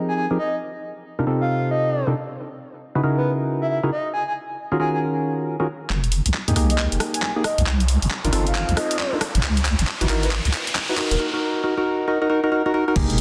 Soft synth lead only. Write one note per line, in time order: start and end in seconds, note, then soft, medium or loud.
0.08 0.14 G#5 medium
0.17 0.25 G#5 medium
0.38 0.55 D#5 medium
1.41 1.69 F5 medium
1.71 2.07 D#5 medium
3.17 3.30 B4 medium
3.61 3.67 E5 medium
3.70 3.78 E5 medium
3.92 4.08 D#5 medium
4.14 4.22 G#5 medium
4.28 4.33 G#5 medium
4.80 4.89 G#5 medium
4.93 4.99 G#5 medium
6.70 6.83 D#5 medium
7.14 7.20 G#5 medium
7.22 7.31 G#5 medium
7.44 7.61 D#5 medium
8.47 8.75 F5 medium
8.77 9.13 D#5 loud
10.23 10.30 B4 medium
11.11 11.18 A#4 medium